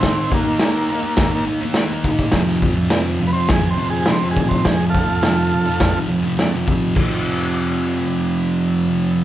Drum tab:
CC |----------------|----------------|----------------|x---------------|
HH |o---o---o---o---|o---o---o---o---|o---o---o---o---|----------------|
SD |o---o---o---o---|o---o---o---o---|o---o---o---o---|----------------|
BD |o-o-----o-----oo|o-o-----o-----oo|o-o-----o-----o-|o---------------|